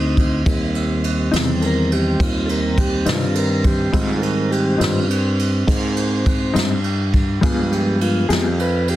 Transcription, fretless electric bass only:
0.00 0.43 D2 medium
0.46 1.30 D#2 medium
1.34 2.18 E2 medium
2.20 3.04 D#2 medium
3.06 3.91 G2 medium
3.93 4.78 G#2 medium
4.80 5.66 G2 medium
5.67 6.53 G#2 medium
6.55 7.41 G2 medium
7.43 8.28 G2 medium
8.30 8.96 F2 medium

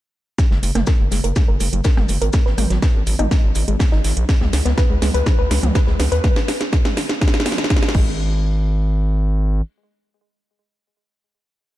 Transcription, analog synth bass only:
0.51 0.59 F#1 medium
0.63 0.71 F#1 loud
0.75 0.83 F#1 medium
1.00 1.08 F#1 medium
1.12 1.20 F#1 loud
1.24 1.32 F#1 medium
1.48 1.56 F#1 medium
1.60 1.69 F#1 medium
1.73 1.81 F#1 medium
1.97 2.05 F#1 medium
2.09 2.17 F#1 medium
2.21 2.30 G#1 medium
2.46 2.54 G#1 medium
2.58 2.66 G#1 medium
2.70 2.78 G#1 loud
2.95 3.03 G#1 medium
3.07 3.15 G#1 loud
3.19 3.27 G#1 medium
3.44 3.52 G#1 medium
3.56 3.64 G#1 loud
3.68 3.76 G#1 medium
3.93 4.00 G#1 medium
4.05 4.13 G#1 loud
4.17 4.25 A#1 medium
4.41 4.49 C#2 medium
4.53 4.61 C#2 loud
4.66 4.74 C#2 loud
4.90 4.98 C#2 medium
5.02 5.10 C#2 loud
5.14 5.22 C#2 medium
5.39 5.47 C#2 medium
5.51 5.59 C#2 loud
5.63 5.71 C#2 medium
5.88 5.95 C#2 medium
6.00 6.08 C#2 loud
6.12 6.20 D#2 medium
7.95 9.61 G#1 loud

